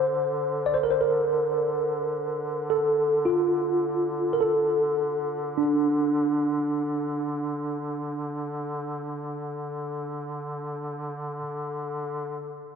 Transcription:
Already playing: duduk D3, tine electric piano C5
0.66 tine electric piano D5
0.74 tine electric piano C5
0.83 tine electric piano A#4
0.91 tine electric piano C5
1.01 tine electric piano A#4
2.70 tine electric piano A4
3.25 tine electric piano F4
4.33 tine electric piano A#4
4.41 tine electric piano A4
5.57 tine electric piano D4

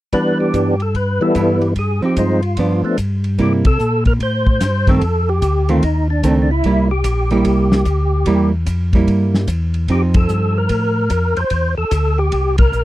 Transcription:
0.13 tonewheel organ E3 G3 B3 D4 B4, kick, ride
0.40 tonewheel organ G4
0.54 tonewheel organ G2, kick, hi-hat pedal, ride
0.80 tonewheel organ A4, ride
0.95 tonewheel organ B4, kick, ride
1.21 tonewheel organ E3 G3 B3 E4 A4
1.35 tonewheel organ G2, hollow-body jazz guitar G3 B3 E4, kick, hi-hat pedal, ride
1.61 tonewheel organ G4, ride
1.76 tonewheel organ G#4, kick, ride
2.02 hollow-body jazz guitar F3 C4 D#4, tonewheel organ G4
2.16 tonewheel organ G2 F3 G#3 C4 D#4 F4, kick, hi-hat pedal, ride
2.42 ride
2.57 hollow-body jazz guitar F3 B3 D4, kick, ride
2.84 tonewheel organ F3 A3 B3 D4
2.98 tonewheel organ G2, kick, hi-hat pedal, ride
3.24 ride
3.38 tonewheel organ C3 G4, hollow-body jazz guitar G3 A#3 E4, kick, ride
3.65 tonewheel organ A4, kick, ride
3.79 tonewheel organ A#2, hi-hat pedal
4.05 tonewheel organ A#4, kick, ride
4.20 tonewheel organ A2 C5, kick, ride
4.47 kick
4.61 tonewheel organ G2, kick, snare, hi-hat pedal, ride
4.87 hollow-body jazz guitar D#3 A3 C4, tonewheel organ A4, kick, ride
5.01 tonewheel organ F2, kick, ride
5.29 tonewheel organ G4
5.42 tonewheel organ D2, kick, hi-hat pedal, ride
5.69 hollow-body jazz guitar D#3 A3 C4, tonewheel organ F4, ride
5.83 tonewheel organ D#2 D#4, kick, ride
6.10 tonewheel organ D4
6.23 tonewheel organ C#2, hollow-body jazz guitar D#3 A3 C4, kick, hi-hat pedal, ride
6.42 tonewheel organ D4
6.51 tonewheel organ E4
6.64 tonewheel organ C2, hollow-body jazz guitar G3 A#3 E4, kick, ride
6.91 tonewheel organ G4
7.04 tonewheel organ A#1, kick, hi-hat pedal, ride
7.30 hollow-body jazz guitar G3 A#3 E4, ride
7.45 tonewheel organ C2, kick, ride
7.72 snare
7.85 tonewheel organ D2, kick, hi-hat pedal, ride
8.26 tonewheel organ E2, hollow-body jazz guitar G3 A#3 E4, kick, ride
8.66 tonewheel organ F2, kick, hi-hat pedal, ride
8.93 hollow-body jazz guitar G3 A#3 E4, kick, ride
9.07 tonewheel organ G2, kick, ride
9.34 snare
9.47 tonewheel organ E2, kick, hi-hat pedal, ride
9.74 ride
9.88 tonewheel organ F2 G4, hollow-body jazz guitar F3 C4 D#4, kick, ride
10.14 tonewheel organ A4, kick, ride
10.29 tonewheel organ G2, hi-hat pedal
10.58 tonewheel organ A#4
10.69 tonewheel organ A2, kick, ride
11.10 tonewheel organ F2, kick, hi-hat pedal, ride
11.36 tonewheel organ F2 C5, ride
11.50 tonewheel organ E2, kick, ride
11.78 tonewheel organ E2 A4
11.91 tonewheel organ D2, kick, hi-hat pedal, ride
12.18 tonewheel organ G4
12.32 tonewheel organ C2, kick, ride
12.58 tonewheel organ A#4, kick, ride
12.73 tonewheel organ A#1, hi-hat pedal

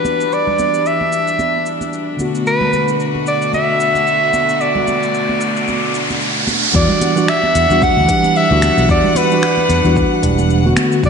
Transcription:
Already playing: string section E3 G3 D4 F#4, tine electric piano E3 G3 D4 F#4, soprano saxophone B4
0.05 high conga, shaker
0.21 shaker
0.32 soprano saxophone D5, shaker
0.47 low conga
0.59 high conga, shaker
0.74 shaker
0.86 soprano saxophone E5, shaker
1.01 high conga
1.12 shaker
1.28 shaker
1.39 high conga, shaker
1.66 shaker
1.81 high conga, shaker
1.93 shaker
2.17 string section B2 A3 F#4, tine electric piano D3 A3 B3, high conga, shaker
2.21 tine electric piano F#4
2.35 shaker
2.46 soprano saxophone B4, riser, shaker
2.61 low conga
2.73 high conga, shaker
2.88 shaker
3.00 shaker
3.15 high conga
3.27 soprano saxophone D5, shaker
3.42 shaker
3.53 soprano saxophone E5, high conga, shaker
3.80 shaker
3.95 high conga, shaker
4.07 shaker
4.34 high conga, shaker
4.49 shaker
4.61 soprano saxophone D5, shaker
4.75 low conga
4.87 high conga, shaker
5.03 shaker
5.14 shaker
5.29 high conga
5.41 shaker
5.56 shaker
5.68 high conga, shaker
5.94 shaker
6.10 high conga, shaker
6.21 shaker
6.47 high conga, shaker
6.63 shaker
6.73 fretless electric bass E2, tine electric piano E3 G3 D4 F#4, string section E3 G3 D4 F#5, soprano saxophone D5, kick, shaker
6.89 low conga
7.01 closed hi-hat, high conga, shaker
7.16 tine electric piano E3 G3 D4 F#4, shaker
7.28 soprano saxophone E5, finger snap, shaker
7.43 high conga
7.55 fretless electric bass E2, closed hi-hat, shaker
7.70 fretless electric bass E2, tine electric piano E3 G3 D4 F#4, shaker
7.82 soprano saxophone F#5, kick, high conga, shaker
7.97 fretless electric bass D2
8.08 tine electric piano E3 G3 D4 G4, kick, closed hi-hat, shaker
8.24 high conga, shaker
8.36 soprano saxophone E5, shaker
8.50 fretless electric bass D2, tine electric piano E3 G3 D4 F#4
8.62 finger snap, closed hi-hat, high conga, shaker
8.78 fretless electric bass B1, shaker
8.88 fretless electric bass E2, tine electric piano E3 G3 D4 F#4, soprano saxophone D5, kick, shaker
9.04 low conga
9.15 soprano saxophone B4, closed hi-hat, high conga, shaker
9.30 tine electric piano E3 G3 D4 F#4, shaker
9.43 finger snap, shaker
9.57 high conga
9.69 fretless electric bass E2, closed hi-hat, shaker
9.84 fretless electric bass E2, tine electric piano E3 G3 D4 F#4, shaker
9.96 kick, high conga, shaker
10.22 fretless electric bass E1, tine electric piano E3 G3 D4 G4, kick, closed hi-hat, shaker
10.38 high conga, shaker
10.50 shaker
10.64 tine electric piano D3 A3 B3 F#4
10.77 string section D3 A3 B3 F#4, finger snap, closed hi-hat, high conga, shaker
10.92 shaker
11.03 fretless electric bass B1, tine electric piano A3 B3 F#4, soprano saxophone D5, kick, shaker

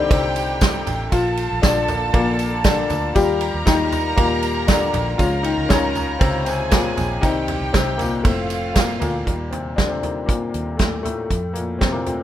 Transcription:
Already playing: upright piano D3 D#3 G3 C4 D4 D#4 G4, violin section G4 G5
0.09 fingered electric bass C2, upright piano C3 C4, kick, ride, tambourine
0.36 ride, tambourine
0.61 kick, snare, ride, tambourine
0.87 fingered electric bass A1, floor tom, ride, tambourine
1.12 fingered electric bass A#1, upright piano F3 F4, violin section A4 A5, kick, ride, tambourine
1.37 ride, tambourine
1.51 fingered electric bass A#1
1.62 fingered electric bass A#1, upright piano D3 D4, kick, snare, ride, tambourine
1.88 upright piano F3 A#3 D4, floor tom, ride, tambourine
2.13 fingered electric bass A#1, upright piano A#2 A#3, kick, ride
2.39 ride, tambourine
2.64 upright piano D3 D4, kick, snare, ride, tambourine
2.90 fingered electric bass D2, floor tom, ride, tambourine
3.15 fingered electric bass D#2, upright piano F3 G3 F4 G4, violin section A#4 A#5, kick, ride, tambourine
3.41 ride, tambourine
3.54 fingered electric bass D#2
3.66 fingered electric bass D#2, upright piano D#3 D#4, kick, snare, ride, tambourine
3.92 floor tom, ride, tambourine
4.16 fingered electric bass D#2, upright piano A#2 F3 G3 A#3 D#4, kick, ride
4.43 ride, tambourine
4.67 upright piano D3 D4, kick, snare, ride, tambourine
4.94 fingered electric bass A#1, floor tom, ride, tambourine
5.18 fingered electric bass C#2, upright piano F3 G#3 C#4 F4, violin section A#4 A#5, kick, ride, tambourine
5.43 upright piano D#3 D#4, ride
5.58 fingered electric bass C#2
5.69 fingered electric bass C#2, upright piano C#3 C#4, kick, snare, ride, tambourine
5.95 floor tom, ride, tambourine
6.19 fingered electric bass C#2, upright piano C3 C4, kick, ride, tambourine
6.45 upright piano C3 C4, violin section G#4 G#5, ride, tambourine
6.71 upright piano A#2 A#3, kick, snare, ride, tambourine
6.97 fingered electric bass A#1, floor tom, ride, tambourine
7.21 fingered electric bass C2, upright piano D#3 G3 C4 D#4, violin section G4 G5, kick, ride, tambourine
7.48 floor tom, ride
7.61 fingered electric bass C2
7.73 fingered electric bass C2, upright piano C3 C4, kick, snare, ride, tambourine
7.98 upright piano A#2 A#3, floor tom, ride, tambourine
8.23 fingered electric bass F1, upright piano A2 F3 A3 C4, violin section F4 F5, kick, ride, tambourine
8.50 ride, tambourine
8.74 upright piano A#2 A#3, kick, snare, ride, tambourine
9.00 fingered electric bass D2, upright piano A#2 A#3, floor tom, ride, tambourine
9.26 fingered electric bass D#2, upright piano D#3 G3 A#3, kick, closed hi-hat
9.50 upright piano C3 C4, closed hi-hat, floor tom
9.76 upright piano D3 D4, kick, snare, closed hi-hat
9.88 upright piano C3 C4
10.02 upright piano D#3 G3 A#3, closed hi-hat, floor tom
10.26 upright piano A#2 A#3, kick, closed hi-hat
10.54 fingered electric bass D#2, closed hi-hat
10.77 upright piano A2 A3, kick, snare, closed hi-hat
11.03 upright piano A2 A3, closed hi-hat, floor tom
11.31 fingered electric bass F2, kick, closed hi-hat
11.53 upright piano A#2 A#3, closed hi-hat
11.79 upright piano C3 C4, kick, snare, closed hi-hat
11.92 upright piano A#2 A#3
12.06 upright piano F3 A3 C4, closed hi-hat, floor tom

